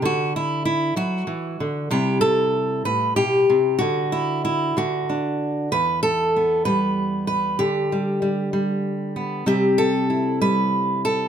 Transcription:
0.02 0.96 D3 medium
0.02 0.35 F#4 loud
0.36 0.64 E4 medium
0.65 0.96 E4 medium
0.96 1.27 F#3 medium
0.96 1.90 F#4 medium
1.27 1.58 E3 medium
1.60 1.91 D3 medium
1.91 2.84 C3 medium
1.91 3.75 G3 soft
1.91 3.76 E4 medium
1.91 2.20 G4 loud
2.21 2.84 A4 loud
2.85 3.16 A2 medium
2.85 3.16 B4 medium
3.16 3.48 B2 medium
3.16 3.79 G4 medium
3.50 3.80 C3 medium
3.79 4.75 D3 medium
3.79 4.74 F#4 loud
4.12 4.43 E4 medium
4.45 4.75 E4 medium
4.77 5.71 D3 medium
4.77 5.72 F#4 medium
5.10 5.68 D4 soft
5.72 7.60 E2 medium
5.72 6.02 B4 loud
6.03 6.65 A4 loud
6.36 7.58 B3 soft
6.65 7.59 G3 medium
6.65 7.26 B4 medium
7.27 7.59 B4 medium
7.59 9.46 D3 medium
7.59 9.15 G4 medium
7.92 8.21 G3 soft
8.22 8.53 G3 soft
8.53 9.46 G3 medium
9.16 9.46 B3 medium
9.46 11.28 C3 medium
9.46 10.40 G3 soft
9.46 11.28 C4 soft
9.46 10.09 G4 loud
9.78 10.40 A4 loud
10.10 11.28 E4 soft
10.41 11.28 G3 medium
10.41 11.04 B4 loud
11.05 11.28 A4 loud

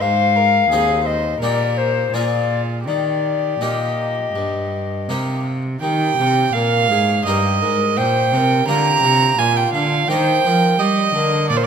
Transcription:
0.01 0.70 G#2 medium
0.01 0.67 G#2 medium
0.01 0.37 C5 medium
0.01 1.07 F5 loud
0.36 0.69 A#4 medium
0.70 1.40 D#2 medium
0.70 1.38 D#2 medium
0.70 1.22 C4 soft
0.70 1.23 D#4 soft
0.70 1.04 G#4 medium
0.70 1.23 G#4 soft
1.05 1.40 C5 medium
1.05 1.41 D#5 medium
1.40 2.12 A#2 medium
1.40 2.10 A#2 medium
1.40 2.10 A#3 soft
1.40 2.10 D#4 soft
1.40 2.10 G4 soft
1.40 2.11 A#4 medium
1.40 1.79 D5 medium
1.77 2.15 C5 medium
2.13 2.88 A#2 medium
2.13 2.83 A#2 soft
2.13 2.83 A#3 soft
2.13 2.85 F4 medium
2.13 2.83 F4 soft
2.13 2.84 G#4 soft
2.13 2.61 D5 medium
2.86 3.60 D#3 medium
2.86 3.57 D#3 soft
2.86 5.41 G4 medium
2.86 3.63 D5 medium
3.61 4.33 A#2 soft
3.61 4.31 A#2 soft
3.61 4.14 A#3 soft
3.61 4.14 D#4 soft
3.61 4.15 G4 soft
3.61 5.09 D#5 medium
4.35 5.10 G2 medium
4.35 5.05 G2 soft
5.09 5.81 C3 soft
5.09 5.78 C3 soft
5.09 5.62 A#3 soft
5.09 5.62 D#4 soft
5.09 5.62 G4 soft
5.81 6.15 D#3 medium
5.81 6.14 D#3 soft
5.81 6.56 G4 medium
5.81 6.55 G5 medium
6.18 6.53 C3 medium
6.18 6.51 C3 medium
6.53 6.91 A#2 medium
6.53 6.87 A#2 soft
6.53 6.89 A#4 medium
6.53 7.25 F5 medium
6.90 7.25 G#2 medium
6.90 7.23 G#2 soft
6.90 7.27 G#4 medium
7.25 7.63 G2 medium
7.25 7.58 G2 medium
7.25 7.52 A#3 soft
7.25 8.29 D#4 soft
7.25 7.63 G4 medium
7.25 8.29 A#4 soft
7.25 7.98 D#5 medium
7.62 7.99 G#2 medium
7.62 7.94 G#2 soft
7.62 7.98 A#4 medium
7.97 8.34 A#2 medium
7.97 8.29 A#2 medium
7.97 8.32 C5 medium
7.97 8.67 G5 medium
8.32 8.67 C3 medium
8.32 8.64 C3 soft
8.32 8.38 C5 medium
8.37 8.67 A#4 medium
8.67 9.02 D3 medium
8.67 9.00 D3 medium
8.67 10.05 A#3 soft
8.67 10.06 F4 soft
8.67 9.39 G4 medium
8.67 10.06 A#4 soft
8.67 9.40 A#5 loud
9.03 9.38 C3 medium
9.03 9.35 C3 medium
9.38 9.73 A#2 medium
9.38 9.71 A#2 medium
9.38 10.10 F4 medium
9.38 9.58 G#5 medium
9.57 9.73 G5 medium
9.73 10.06 D3 medium
9.73 10.09 D3 medium
9.73 10.10 F5 medium
10.09 10.44 D#3 medium
10.09 10.41 D#3 medium
10.09 10.41 A#3 soft
10.09 11.47 D#4 soft
10.09 11.47 A#4 soft
10.09 10.43 C5 medium
10.09 10.80 G5 medium
10.43 10.79 F3 medium
10.43 10.76 F3 medium
10.43 10.78 A#4 medium
10.43 10.48 C5 medium
10.79 11.11 G3 medium
10.79 11.14 G3 medium
10.79 11.14 G4 medium
10.79 11.49 D#5 medium
11.14 11.46 D3 soft
11.14 11.51 D3 medium
11.14 11.49 A#4 medium
11.49 11.67 A#2 medium
11.49 11.67 A#2 soft
11.49 11.67 A#4 medium
11.49 11.58 D5 medium
11.56 11.65 C5 medium

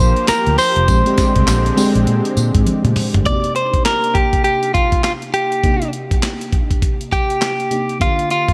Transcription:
0.00 0.12 A#1 loud
0.00 0.86 F3 medium
0.00 0.86 A#3 medium
0.00 0.90 A#3 medium
0.00 0.88 D4 medium
0.00 0.90 F4 medium
0.00 0.19 G4 medium
0.00 3.22 G4 medium
0.00 0.91 A#4 loud
0.00 0.28 C5 loud
0.16 closed hi-hat medium
0.28 0.58 A#4 loud
0.28 muted fingered electric bass stroke soft
0.28 snare loud
0.28 clap medium
0.28 closed hi-hat medium
0.28 tambourine medium
0.46 0.55 D2 medium
0.46 closed hi-hat medium
0.58 2.62 C5 medium
0.58 open hi-hat medium
0.58 tambourine medium
0.76 0.85 F1 medium
0.76 closed hi-hat medium
0.88 1.01 A#1 loud
0.88 3.24 D3 medium
0.88 0.99 G#3 medium
0.88 3.24 G#3 medium
0.88 0.99 C4 medium
0.88 3.24 C4 medium
0.88 1.00 D4 medium
0.88 1.00 G4 medium
0.88 kick loud
0.88 closed hi-hat medium
0.88 tambourine medium
1.06 1.51 G#3 medium
1.06 1.51 C4 medium
1.06 1.51 D4 medium
1.06 1.51 G4 medium
1.06 closed hi-hat medium
1.18 kick loud
1.18 snare medium
1.18 closed hi-hat medium
1.18 tambourine medium
1.36 1.44 C2 medium
1.36 kick medium
1.36 closed hi-hat medium
1.47 1.69 A#1 medium
1.47 snare loud
1.47 clap medium
1.47 closed hi-hat medium
1.47 tambourine medium
1.66 closed hi-hat medium
1.77 2.56 G#3 loud
1.77 2.56 C4 medium
1.77 2.56 D4 medium
1.77 2.56 G4 loud
1.77 open hi-hat medium
1.77 tambourine medium
1.95 2.04 A#1 loud
1.95 closed hi-hat medium
2.07 2.20 A#2 medium
2.07 closed hi-hat medium
2.25 closed hi-hat medium
2.37 2.50 A#2 loud
2.37 closed hi-hat medium
2.37 tambourine medium
2.54 2.63 G#2 medium
2.54 kick medium
2.54 closed hi-hat medium
2.66 closed hi-hat medium
2.66 high tom medium
2.84 2.93 A#2 loud
2.84 closed hi-hat medium
2.84 mid tom medium
2.96 mid tom medium
2.96 open hi-hat medium
3.14 3.23 G1 medium
3.14 closed hi-hat soft
3.14 floor tom loud
3.25 5.59 C3 medium
3.25 5.59 A#3 medium
3.25 5.60 D4 medium
3.25 5.60 D#4 medium
3.25 3.34 F#4 medium
3.25 3.54 D5 loud
3.25 kick loud
3.25 closed hi-hat medium
3.34 5.63 G4 medium
3.44 closed hi-hat medium
3.56 3.85 C5 medium
3.56 closed hi-hat medium
3.74 kick medium
3.74 closed hi-hat medium
3.85 4.16 A#4 medium
3.85 snare loud
3.85 clap medium
3.85 closed hi-hat medium
4.04 closed hi-hat medium
4.15 4.43 G4 medium
4.15 kick loud
4.15 closed hi-hat medium
4.33 kick medium
4.33 closed hi-hat medium
4.44 4.74 G4 medium
4.44 closed hi-hat medium
4.63 closed hi-hat medium
4.74 5.03 F4 medium
4.74 kick medium
4.74 closed hi-hat medium
4.92 kick medium
4.92 closed hi-hat medium
5.04 5.12 F4 medium
5.04 snare medium
5.04 clap medium
5.04 closed hi-hat medium
5.22 closed hi-hat soft
5.34 5.89 G4 medium
5.34 closed hi-hat medium
5.52 closed hi-hat soft
5.63 7.67 C3 medium
5.63 7.68 A#3 medium
5.63 7.68 D4 medium
5.63 7.68 D#4 medium
5.63 7.68 G4 medium
5.63 kick loud
5.63 closed hi-hat medium
5.82 closed hi-hat medium
5.93 closed hi-hat medium
6.11 kick medium
6.11 closed hi-hat medium
6.23 snare loud
6.23 clap medium
6.23 closed hi-hat medium
6.41 closed hi-hat medium
6.53 kick medium
6.53 closed hi-hat medium
6.71 kick medium
6.71 closed hi-hat soft
6.82 kick medium
6.82 closed hi-hat medium
7.01 closed hi-hat medium
7.12 7.97 G4 medium
7.12 kick medium
7.12 closed hi-hat medium
7.30 closed hi-hat medium
7.42 snare loud
7.42 clap medium
7.42 closed hi-hat medium
7.60 closed hi-hat soft
7.71 8.01 C3 soft
7.71 7.99 A#3 soft
7.71 7.99 D4 soft
7.71 8.01 D#4 soft
7.71 8.00 G4 soft
7.71 closed hi-hat medium
7.89 closed hi-hat soft
7.99 8.53 D3 medium
7.99 8.53 A#3 medium
7.99 8.53 D4 medium
7.99 8.53 F4 medium
7.99 8.30 F4 medium
7.99 8.53 G4 medium
7.99 kick loud
7.99 closed hi-hat medium
8.19 closed hi-hat medium
8.30 8.53 F4 medium
8.30 closed hi-hat medium
8.48 kick medium
8.48 closed hi-hat medium

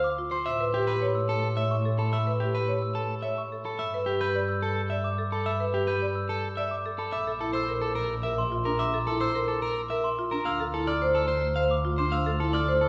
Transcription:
0.00 0.31 D2 soft
0.04 0.22 D6 medium
0.19 0.36 F4 medium
0.31 0.50 C5 medium
0.31 0.50 C6 medium
0.46 3.64 A2 medium
0.46 0.64 E5 medium
0.46 0.64 E6 medium
0.60 0.78 B4 medium
0.74 0.92 G4 medium
0.87 1.06 B4 medium
1.02 1.20 C#5 medium
1.15 1.33 E6 medium
1.29 1.47 A4 medium
1.57 1.75 C#5 medium
1.57 1.75 E5 medium
1.71 1.89 C#6 medium
1.85 2.03 A4 medium
1.99 2.17 A4 soft
1.99 2.17 B5 medium
2.13 2.31 E5 medium
2.13 2.31 E6 medium
2.27 2.45 B4 soft
2.40 2.58 G4 soft
2.40 2.59 G4 medium
2.55 2.73 B4 medium
2.68 2.86 C#5 soft
2.82 3.00 E6 soft
2.95 3.14 A4 medium
3.22 3.42 C#5 soft
3.22 3.41 E5 soft
3.38 3.56 C#6 medium
3.52 3.70 A4 soft
3.65 3.84 A4 soft
3.65 3.84 B5 soft
3.79 6.98 G2 medium
3.79 3.97 E5 medium
3.79 3.98 E6 medium
3.94 4.12 B4 medium
4.06 4.25 G4 medium
4.21 4.39 B4 medium
4.21 4.39 G6 medium
4.35 4.53 D5 soft
4.49 4.67 E6 medium
4.62 4.81 A4 medium
4.90 5.09 D5 soft
4.90 5.08 E5 soft
5.04 5.23 D6 medium
5.18 5.36 A4 medium
5.32 5.50 A4 medium
5.32 5.50 B5 medium
5.46 5.64 E5 medium
5.46 5.64 E6 medium
5.60 5.78 B4 medium
5.74 5.92 G4 medium
5.87 6.06 B4 medium
5.87 6.06 G6 medium
6.02 6.20 D5 medium
6.15 6.34 E6 medium
6.29 6.47 A4 medium
6.57 6.76 D5 medium
6.57 6.75 E5 medium
6.71 6.89 D6 medium
6.86 7.03 A4 medium
6.99 7.17 A4 medium
6.99 7.17 B5 medium
7.12 10.31 A#1 medium
7.12 7.31 E5 medium
7.12 7.31 D6 medium
7.27 7.45 A4 medium
7.41 7.59 E4 medium
7.41 7.53 A4 medium
7.53 7.72 C5 medium
7.53 7.73 E6 medium
7.69 7.87 A#4 medium
7.81 7.95 A4 medium
7.81 8.00 D6 medium
7.95 8.14 A#4 medium
8.23 8.42 A#4 medium
8.23 8.42 E5 medium
8.38 8.56 C6 medium
8.52 8.70 F4 medium
8.65 8.84 D4 medium
8.65 8.84 A#4 medium
8.65 8.84 A#5 medium
8.79 8.97 E5 medium
8.79 8.98 D6 medium
8.94 9.12 A4 medium
9.07 9.26 E4 medium
9.07 9.20 A4 medium
9.21 9.39 C5 medium
9.21 9.39 E6 medium
9.35 9.53 A#4 medium
9.48 9.62 A4 medium
9.48 9.67 D6 medium
9.62 9.81 A#4 medium
9.90 10.09 A#4 medium
9.90 10.08 E5 medium
10.04 10.22 C6 medium
10.19 10.37 F4 medium
10.31 10.50 D4 medium
10.31 10.50 A#4 medium
10.31 10.50 A#5 medium
10.45 12.89 D2 medium
10.45 10.64 F5 medium
10.45 10.64 E6 medium
10.60 10.78 A4 medium
10.74 10.92 E4 medium
10.74 10.92 A4 medium
10.87 11.06 D5 medium
10.87 11.06 F6 medium
11.02 11.20 C5 medium
11.15 11.27 A4 medium
11.15 11.34 E6 medium
11.28 11.47 C5 medium
11.56 11.75 C5 medium
11.56 11.75 F5 medium
11.71 11.89 D6 medium
11.85 12.03 F4 medium
11.98 12.17 D4 medium
11.98 12.17 C5 medium
11.98 12.17 C6 medium
12.12 12.31 F5 medium
12.12 12.31 E6 medium
12.26 12.45 A4 medium
12.40 12.59 E4 medium
12.40 12.58 A4 medium
12.53 12.72 D5 medium
12.53 12.73 F6 medium
12.68 12.86 C5 medium
12.81 12.89 A4 medium
12.81 12.89 E6 medium

